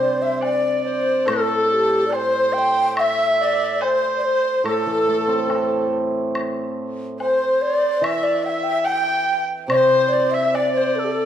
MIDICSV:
0, 0, Header, 1, 6, 480
1, 0, Start_track
1, 0, Tempo, 848656
1, 725, Time_signature, 2, 2, 24, 8
1, 4078, Tempo, 837989
1, 6394, End_track
2, 0, Start_track
2, 0, Title_t, "Dizi"
2, 0, Program_c, 0, 73
2, 0, Note_on_c, 0, 72, 69
2, 93, Note_off_c, 0, 72, 0
2, 122, Note_on_c, 0, 76, 65
2, 234, Note_off_c, 0, 76, 0
2, 241, Note_on_c, 0, 74, 62
2, 467, Note_off_c, 0, 74, 0
2, 479, Note_on_c, 0, 72, 66
2, 721, Note_on_c, 0, 69, 75
2, 729, Note_off_c, 0, 72, 0
2, 1193, Note_on_c, 0, 74, 66
2, 1202, Note_off_c, 0, 69, 0
2, 1220, Note_on_c, 0, 72, 72
2, 1226, Note_off_c, 0, 74, 0
2, 1432, Note_on_c, 0, 79, 82
2, 1440, Note_off_c, 0, 72, 0
2, 1678, Note_off_c, 0, 79, 0
2, 1686, Note_on_c, 0, 76, 87
2, 1907, Note_off_c, 0, 76, 0
2, 1923, Note_on_c, 0, 74, 77
2, 2167, Note_on_c, 0, 72, 72
2, 2176, Note_off_c, 0, 74, 0
2, 2402, Note_off_c, 0, 72, 0
2, 2406, Note_on_c, 0, 72, 80
2, 2623, Note_off_c, 0, 72, 0
2, 2643, Note_on_c, 0, 69, 78
2, 3335, Note_off_c, 0, 69, 0
2, 4082, Note_on_c, 0, 72, 64
2, 4312, Note_on_c, 0, 74, 74
2, 4321, Note_off_c, 0, 72, 0
2, 4548, Note_on_c, 0, 76, 85
2, 4556, Note_off_c, 0, 74, 0
2, 4665, Note_on_c, 0, 74, 76
2, 4674, Note_off_c, 0, 76, 0
2, 4791, Note_on_c, 0, 79, 68
2, 4800, Note_off_c, 0, 74, 0
2, 4813, Note_on_c, 0, 76, 74
2, 4819, Note_off_c, 0, 79, 0
2, 5024, Note_on_c, 0, 79, 80
2, 5033, Note_off_c, 0, 76, 0
2, 5382, Note_off_c, 0, 79, 0
2, 5506, Note_on_c, 0, 74, 84
2, 5532, Note_on_c, 0, 72, 91
2, 5537, Note_off_c, 0, 74, 0
2, 5751, Note_on_c, 0, 74, 76
2, 5759, Note_off_c, 0, 72, 0
2, 5869, Note_on_c, 0, 76, 78
2, 5878, Note_off_c, 0, 74, 0
2, 5990, Note_on_c, 0, 74, 70
2, 5999, Note_off_c, 0, 76, 0
2, 6119, Note_on_c, 0, 72, 75
2, 6127, Note_off_c, 0, 74, 0
2, 6244, Note_on_c, 0, 69, 64
2, 6252, Note_off_c, 0, 72, 0
2, 6276, Note_on_c, 0, 67, 53
2, 6284, Note_off_c, 0, 69, 0
2, 6312, Note_on_c, 0, 69, 67
2, 6321, Note_off_c, 0, 67, 0
2, 6394, Note_off_c, 0, 69, 0
2, 6394, End_track
3, 0, Start_track
3, 0, Title_t, "Xiao"
3, 0, Program_c, 1, 77
3, 3, Note_on_c, 1, 74, 78
3, 126, Note_on_c, 1, 76, 76
3, 134, Note_off_c, 1, 74, 0
3, 237, Note_off_c, 1, 76, 0
3, 240, Note_on_c, 1, 74, 80
3, 444, Note_off_c, 1, 74, 0
3, 444, Note_on_c, 1, 74, 58
3, 499, Note_on_c, 1, 72, 83
3, 507, Note_off_c, 1, 74, 0
3, 731, Note_on_c, 1, 69, 77
3, 739, Note_off_c, 1, 72, 0
3, 927, Note_off_c, 1, 69, 0
3, 930, Note_on_c, 1, 69, 58
3, 981, Note_on_c, 1, 67, 79
3, 989, Note_off_c, 1, 69, 0
3, 1169, Note_off_c, 1, 67, 0
3, 1173, Note_on_c, 1, 74, 61
3, 1218, Note_on_c, 1, 72, 86
3, 1226, Note_off_c, 1, 74, 0
3, 1462, Note_on_c, 1, 79, 102
3, 1470, Note_off_c, 1, 72, 0
3, 1698, Note_on_c, 1, 76, 95
3, 1707, Note_off_c, 1, 79, 0
3, 1943, Note_on_c, 1, 74, 90
3, 1951, Note_off_c, 1, 76, 0
3, 2122, Note_off_c, 1, 74, 0
3, 2122, Note_on_c, 1, 74, 60
3, 2181, Note_on_c, 1, 72, 87
3, 2189, Note_off_c, 1, 74, 0
3, 2358, Note_off_c, 1, 72, 0
3, 2361, Note_on_c, 1, 74, 61
3, 2404, Note_on_c, 1, 72, 89
3, 2412, Note_off_c, 1, 74, 0
3, 2634, Note_off_c, 1, 72, 0
3, 2638, Note_on_c, 1, 69, 86
3, 3332, Note_off_c, 1, 69, 0
3, 4067, Note_on_c, 1, 72, 86
3, 4310, Note_on_c, 1, 74, 86
3, 4319, Note_off_c, 1, 72, 0
3, 4552, Note_on_c, 1, 76, 87
3, 4560, Note_off_c, 1, 74, 0
3, 4663, Note_on_c, 1, 74, 82
3, 4671, Note_off_c, 1, 76, 0
3, 4780, Note_on_c, 1, 76, 91
3, 4788, Note_off_c, 1, 74, 0
3, 4894, Note_on_c, 1, 79, 91
3, 4903, Note_off_c, 1, 76, 0
3, 5003, Note_off_c, 1, 79, 0
3, 5006, Note_on_c, 1, 79, 99
3, 5350, Note_off_c, 1, 79, 0
3, 5490, Note_on_c, 1, 72, 97
3, 5724, Note_on_c, 1, 74, 89
3, 5733, Note_off_c, 1, 72, 0
3, 5853, Note_on_c, 1, 76, 82
3, 5862, Note_off_c, 1, 74, 0
3, 5970, Note_off_c, 1, 76, 0
3, 5973, Note_on_c, 1, 74, 86
3, 6089, Note_off_c, 1, 74, 0
3, 6093, Note_on_c, 1, 72, 77
3, 6223, Note_on_c, 1, 69, 82
3, 6231, Note_off_c, 1, 72, 0
3, 6394, Note_off_c, 1, 69, 0
3, 6394, End_track
4, 0, Start_track
4, 0, Title_t, "Erhu"
4, 0, Program_c, 2, 110
4, 0, Note_on_c, 2, 72, 64
4, 231, Note_on_c, 2, 74, 67
4, 240, Note_off_c, 2, 72, 0
4, 712, Note_on_c, 2, 69, 71
4, 720, Note_off_c, 2, 74, 0
4, 1203, Note_on_c, 2, 72, 81
4, 1212, Note_off_c, 2, 69, 0
4, 1679, Note_off_c, 2, 72, 0
4, 1682, Note_on_c, 2, 76, 93
4, 2158, Note_on_c, 2, 72, 84
4, 2167, Note_off_c, 2, 76, 0
4, 2630, Note_on_c, 2, 69, 71
4, 2639, Note_off_c, 2, 72, 0
4, 3351, Note_off_c, 2, 69, 0
4, 4076, Note_on_c, 2, 72, 73
4, 4554, Note_on_c, 2, 76, 79
4, 4563, Note_off_c, 2, 72, 0
4, 4782, Note_off_c, 2, 76, 0
4, 4786, Note_on_c, 2, 76, 78
4, 5016, Note_on_c, 2, 79, 92
4, 5024, Note_off_c, 2, 76, 0
4, 5378, Note_off_c, 2, 79, 0
4, 5497, Note_on_c, 2, 72, 81
4, 5870, Note_on_c, 2, 76, 76
4, 5879, Note_off_c, 2, 72, 0
4, 5992, Note_on_c, 2, 74, 75
4, 6000, Note_off_c, 2, 76, 0
4, 6394, Note_off_c, 2, 74, 0
4, 6394, End_track
5, 0, Start_track
5, 0, Title_t, "Hammered dulcimer"
5, 0, Program_c, 3, 15
5, 0, Note_on_c, 3, 48, 48
5, 0, Note_on_c, 3, 55, 46
5, 236, Note_off_c, 3, 55, 0
5, 718, Note_on_c, 3, 45, 54
5, 721, Note_off_c, 3, 48, 0
5, 2158, Note_off_c, 3, 45, 0
5, 2624, Note_on_c, 3, 45, 56
5, 2752, Note_on_c, 3, 52, 45
5, 2871, Note_on_c, 3, 57, 42
5, 2984, Note_on_c, 3, 60, 43
5, 3104, Note_on_c, 3, 64, 42
5, 3716, Note_off_c, 3, 52, 0
5, 3837, Note_off_c, 3, 57, 0
5, 3953, Note_off_c, 3, 60, 0
5, 4072, Note_off_c, 3, 45, 0
5, 4073, Note_off_c, 3, 64, 0
5, 4538, Note_on_c, 3, 52, 57
5, 5493, Note_on_c, 3, 48, 59
5, 5982, Note_off_c, 3, 52, 0
5, 6394, Note_off_c, 3, 48, 0
5, 6394, End_track
6, 0, Start_track
6, 0, Title_t, "Drums"
6, 240, Note_on_c, 9, 77, 49
6, 296, Note_off_c, 9, 77, 0
6, 723, Note_on_c, 9, 76, 70
6, 780, Note_off_c, 9, 76, 0
6, 1201, Note_on_c, 9, 77, 43
6, 1258, Note_off_c, 9, 77, 0
6, 1679, Note_on_c, 9, 76, 69
6, 1736, Note_off_c, 9, 76, 0
6, 2159, Note_on_c, 9, 77, 41
6, 2215, Note_off_c, 9, 77, 0
6, 2633, Note_on_c, 9, 76, 51
6, 2690, Note_off_c, 9, 76, 0
6, 3110, Note_on_c, 9, 76, 37
6, 3110, Note_on_c, 9, 77, 39
6, 3166, Note_off_c, 9, 76, 0
6, 3166, Note_off_c, 9, 77, 0
6, 3593, Note_on_c, 9, 76, 55
6, 3649, Note_off_c, 9, 76, 0
6, 4073, Note_on_c, 9, 77, 43
6, 4130, Note_off_c, 9, 77, 0
6, 4554, Note_on_c, 9, 76, 61
6, 4611, Note_off_c, 9, 76, 0
6, 5024, Note_on_c, 9, 77, 44
6, 5081, Note_off_c, 9, 77, 0
6, 5503, Note_on_c, 9, 76, 65
6, 5560, Note_off_c, 9, 76, 0
6, 5989, Note_on_c, 9, 77, 44
6, 6047, Note_off_c, 9, 77, 0
6, 6394, End_track
0, 0, End_of_file